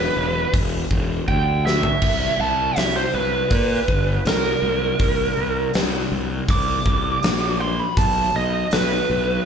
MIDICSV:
0, 0, Header, 1, 4, 480
1, 0, Start_track
1, 0, Tempo, 743494
1, 1308, Time_signature, 4, 2, 24, 8
1, 6102, End_track
2, 0, Start_track
2, 0, Title_t, "Lead electric guitar"
2, 0, Program_c, 0, 29
2, 0, Note_on_c, 0, 71, 112
2, 336, Note_off_c, 0, 71, 0
2, 828, Note_on_c, 0, 79, 103
2, 1061, Note_off_c, 0, 79, 0
2, 1069, Note_on_c, 0, 76, 100
2, 1535, Note_off_c, 0, 76, 0
2, 1555, Note_on_c, 0, 81, 95
2, 1790, Note_off_c, 0, 81, 0
2, 1790, Note_on_c, 0, 76, 99
2, 1906, Note_off_c, 0, 76, 0
2, 1911, Note_on_c, 0, 72, 82
2, 2026, Note_off_c, 0, 72, 0
2, 2030, Note_on_c, 0, 71, 89
2, 2728, Note_off_c, 0, 71, 0
2, 2758, Note_on_c, 0, 70, 115
2, 3687, Note_off_c, 0, 70, 0
2, 4199, Note_on_c, 0, 86, 103
2, 4892, Note_off_c, 0, 86, 0
2, 4913, Note_on_c, 0, 84, 112
2, 5032, Note_off_c, 0, 84, 0
2, 5032, Note_on_c, 0, 83, 91
2, 5146, Note_off_c, 0, 83, 0
2, 5151, Note_on_c, 0, 81, 101
2, 5382, Note_off_c, 0, 81, 0
2, 5397, Note_on_c, 0, 75, 103
2, 5624, Note_off_c, 0, 75, 0
2, 5635, Note_on_c, 0, 71, 105
2, 6102, Note_off_c, 0, 71, 0
2, 6102, End_track
3, 0, Start_track
3, 0, Title_t, "Fingered electric bass"
3, 0, Program_c, 1, 33
3, 107, Note_on_c, 1, 28, 85
3, 288, Note_off_c, 1, 28, 0
3, 347, Note_on_c, 1, 28, 88
3, 528, Note_off_c, 1, 28, 0
3, 587, Note_on_c, 1, 28, 101
3, 768, Note_off_c, 1, 28, 0
3, 827, Note_on_c, 1, 38, 97
3, 1189, Note_off_c, 1, 38, 0
3, 1306, Note_on_c, 1, 36, 79
3, 1487, Note_off_c, 1, 36, 0
3, 1546, Note_on_c, 1, 36, 93
3, 1728, Note_off_c, 1, 36, 0
3, 1789, Note_on_c, 1, 36, 97
3, 1969, Note_off_c, 1, 36, 0
3, 2026, Note_on_c, 1, 36, 95
3, 2207, Note_off_c, 1, 36, 0
3, 2265, Note_on_c, 1, 46, 94
3, 2447, Note_off_c, 1, 46, 0
3, 2509, Note_on_c, 1, 31, 86
3, 2689, Note_off_c, 1, 31, 0
3, 2745, Note_on_c, 1, 36, 100
3, 2927, Note_off_c, 1, 36, 0
3, 2983, Note_on_c, 1, 36, 94
3, 3166, Note_off_c, 1, 36, 0
3, 3225, Note_on_c, 1, 36, 95
3, 3407, Note_off_c, 1, 36, 0
3, 3469, Note_on_c, 1, 36, 95
3, 3650, Note_off_c, 1, 36, 0
3, 3714, Note_on_c, 1, 36, 93
3, 3893, Note_off_c, 1, 36, 0
3, 3949, Note_on_c, 1, 36, 92
3, 4129, Note_off_c, 1, 36, 0
3, 4186, Note_on_c, 1, 36, 93
3, 4367, Note_off_c, 1, 36, 0
3, 4428, Note_on_c, 1, 36, 93
3, 4609, Note_off_c, 1, 36, 0
3, 4671, Note_on_c, 1, 34, 86
3, 5030, Note_off_c, 1, 34, 0
3, 5146, Note_on_c, 1, 35, 86
3, 5327, Note_off_c, 1, 35, 0
3, 5389, Note_on_c, 1, 35, 89
3, 5568, Note_off_c, 1, 35, 0
3, 5635, Note_on_c, 1, 35, 92
3, 5812, Note_off_c, 1, 35, 0
3, 5873, Note_on_c, 1, 35, 95
3, 6051, Note_off_c, 1, 35, 0
3, 6102, End_track
4, 0, Start_track
4, 0, Title_t, "Drums"
4, 346, Note_on_c, 9, 36, 121
4, 346, Note_on_c, 9, 46, 60
4, 411, Note_off_c, 9, 36, 0
4, 411, Note_off_c, 9, 46, 0
4, 586, Note_on_c, 9, 36, 84
4, 651, Note_off_c, 9, 36, 0
4, 826, Note_on_c, 9, 36, 62
4, 891, Note_off_c, 9, 36, 0
4, 1078, Note_on_c, 9, 38, 84
4, 1142, Note_off_c, 9, 38, 0
4, 1184, Note_on_c, 9, 43, 94
4, 1248, Note_off_c, 9, 43, 0
4, 1302, Note_on_c, 9, 49, 95
4, 1305, Note_on_c, 9, 36, 108
4, 1366, Note_off_c, 9, 49, 0
4, 1369, Note_off_c, 9, 36, 0
4, 1783, Note_on_c, 9, 46, 65
4, 1794, Note_on_c, 9, 38, 97
4, 1848, Note_off_c, 9, 46, 0
4, 1859, Note_off_c, 9, 38, 0
4, 2263, Note_on_c, 9, 46, 66
4, 2265, Note_on_c, 9, 36, 112
4, 2327, Note_off_c, 9, 46, 0
4, 2330, Note_off_c, 9, 36, 0
4, 2507, Note_on_c, 9, 36, 94
4, 2571, Note_off_c, 9, 36, 0
4, 2747, Note_on_c, 9, 46, 55
4, 2758, Note_on_c, 9, 38, 118
4, 2812, Note_off_c, 9, 46, 0
4, 2823, Note_off_c, 9, 38, 0
4, 3224, Note_on_c, 9, 46, 53
4, 3226, Note_on_c, 9, 36, 109
4, 3288, Note_off_c, 9, 46, 0
4, 3291, Note_off_c, 9, 36, 0
4, 3704, Note_on_c, 9, 46, 53
4, 3715, Note_on_c, 9, 38, 108
4, 3768, Note_off_c, 9, 46, 0
4, 3779, Note_off_c, 9, 38, 0
4, 4186, Note_on_c, 9, 46, 59
4, 4187, Note_on_c, 9, 36, 114
4, 4251, Note_off_c, 9, 36, 0
4, 4251, Note_off_c, 9, 46, 0
4, 4427, Note_on_c, 9, 36, 85
4, 4492, Note_off_c, 9, 36, 0
4, 4666, Note_on_c, 9, 46, 54
4, 4677, Note_on_c, 9, 38, 122
4, 4730, Note_off_c, 9, 46, 0
4, 4741, Note_off_c, 9, 38, 0
4, 5145, Note_on_c, 9, 46, 62
4, 5146, Note_on_c, 9, 36, 117
4, 5209, Note_off_c, 9, 46, 0
4, 5211, Note_off_c, 9, 36, 0
4, 5624, Note_on_c, 9, 46, 65
4, 5635, Note_on_c, 9, 38, 107
4, 5689, Note_off_c, 9, 46, 0
4, 5700, Note_off_c, 9, 38, 0
4, 6102, End_track
0, 0, End_of_file